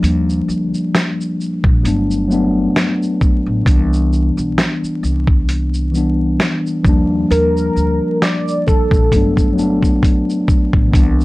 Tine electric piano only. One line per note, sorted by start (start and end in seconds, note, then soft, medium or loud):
0.00 1.03 F3 medium
0.00 1.04 G3 medium
0.00 1.04 A#3 medium
0.00 1.05 D4 medium
1.82 2.20 F#3 medium
1.82 2.21 A3 medium
1.82 2.22 B3 medium
1.87 2.23 D4 medium
2.28 3.31 F#3 medium
2.28 3.32 A3 medium
2.28 3.33 B3 medium
2.34 3.34 D4 medium
3.63 5.00 E3 medium
3.63 5.01 G3 medium
3.63 5.02 B3 medium
3.69 5.03 D4 medium
5.92 6.84 E3 medium
5.92 6.84 G3 medium
5.92 6.85 B3 medium
5.97 6.86 D4 medium
6.83 8.30 F3 medium
6.83 8.31 G3 medium
6.83 8.32 A#3 medium
6.89 8.33 D4 medium
9.11 9.49 F#3 medium
9.11 9.49 A3 medium
9.11 9.50 B3 medium
9.16 9.51 D4 medium
9.53 10.58 F#3 medium
9.53 10.58 A3 medium
9.53 10.59 B3 medium
9.59 10.60 D4 medium
10.88 11.25 E3 medium
10.88 11.25 G3 medium
10.88 11.25 B3 medium
10.94 11.25 D4 medium